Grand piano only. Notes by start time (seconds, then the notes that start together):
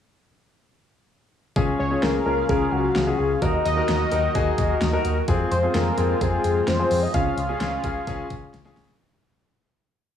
1.56 C#4 F4 G#4
1.91 C#4 F4 G#4
2.26 C#4 F4 A#4
2.49 C#4 F4 A#4
3.07 C#4 F4 G#4
3.42 D#4 F#4 A#4
3.77 D#4 F#4 A#4
4.12 D#4 F#4 A#4
4.35 D#4 F#4 G#4
4.93 D#4 F#4 A#4
5.28 C4 F4 G#4
5.63 C4 F4 G#4
5.98 C4 F4 G#4
6.21 C4 F4 G#4
6.79 C4 F4 G#4
7.14 C#4 F4 G#4
7.49 C#4 F4 G#4
7.84 C#4 F4 G#4
8.07 C#4 F4 G#4
8.65 C#4 F4 G#4